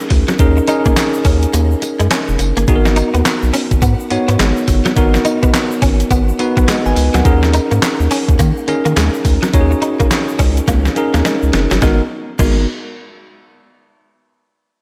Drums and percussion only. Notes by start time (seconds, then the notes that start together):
0.10 kick, open hi-hat, tambourine
0.28 snare, closed hi-hat, shaker
0.39 kick, closed hi-hat, shaker
0.57 shaker
0.67 closed hi-hat, tambourine, shaker
0.85 kick, closed hi-hat, shaker
0.96 snare, clap, closed hi-hat, tambourine, shaker
1.14 shaker
1.25 kick, open hi-hat, tambourine, shaker
1.43 closed hi-hat, shaker
1.53 closed hi-hat, tambourine, shaker
1.71 shaker
1.82 closed hi-hat, tambourine, shaker
2.00 closed hi-hat, shaker
2.11 snare, clap, closed hi-hat, tambourine, shaker
2.28 shaker
2.39 closed hi-hat, tambourine, shaker
2.57 closed hi-hat, shaker
2.68 kick, closed hi-hat, shaker
2.85 snare, shaker
2.96 closed hi-hat, tambourine, shaker
3.14 closed hi-hat, shaker
3.25 snare, clap, closed hi-hat, tambourine, shaker
3.42 shaker
3.53 open hi-hat, tambourine, shaker
3.71 kick, closed hi-hat, shaker
3.82 kick, closed hi-hat, tambourine, shaker
4.00 shaker
4.10 closed hi-hat, tambourine
4.28 closed hi-hat, shaker
4.39 snare, clap, closed hi-hat, tambourine, shaker
4.57 shaker
4.68 kick, open hi-hat, tambourine, shaker
4.86 snare, closed hi-hat, shaker
4.96 kick, closed hi-hat, shaker
5.14 snare, shaker
5.25 closed hi-hat, tambourine, shaker
5.43 kick, closed hi-hat, shaker
5.54 snare, clap, closed hi-hat, tambourine, shaker
5.71 shaker
5.82 kick, open hi-hat, tambourine, shaker
6.00 closed hi-hat, shaker
6.10 kick, closed hi-hat, tambourine, shaker
6.29 shaker
6.39 closed hi-hat, tambourine
6.57 kick, closed hi-hat, shaker
6.68 snare, clap, closed hi-hat, tambourine, shaker
6.86 shaker
6.96 open hi-hat, tambourine, shaker
7.14 snare, closed hi-hat, shaker
7.25 kick, closed hi-hat, shaker
7.43 snare, shaker
7.53 closed hi-hat, tambourine, shaker
7.71 closed hi-hat, shaker
7.82 snare, clap, closed hi-hat, tambourine, shaker
8.00 shaker
8.11 open hi-hat, tambourine, shaker
8.28 kick, closed hi-hat, shaker
8.39 kick, closed hi-hat, tambourine, shaker
8.57 shaker
8.68 closed hi-hat, tambourine
8.86 closed hi-hat, shaker
8.96 snare, clap, closed hi-hat, tambourine, shaker
9.14 shaker
9.25 kick, open hi-hat, tambourine, shaker
9.43 snare, closed hi-hat, shaker
9.54 kick, closed hi-hat, shaker
9.72 shaker
9.82 closed hi-hat, shaker
10.00 kick, closed hi-hat, shaker
10.11 snare, clap, closed hi-hat, shaker
10.28 shaker
10.39 kick, open hi-hat, shaker
10.57 closed hi-hat, shaker
10.68 kick, snare, closed hi-hat, shaker
10.85 snare, shaker
10.96 closed hi-hat, shaker
11.14 snare, closed hi-hat, shaker
11.25 snare, closed hi-hat, shaker
11.43 shaker
11.53 snare, closed hi-hat, shaker
11.71 snare, closed hi-hat, shaker
11.82 kick, snare, shaker
12.39 kick, crash, shaker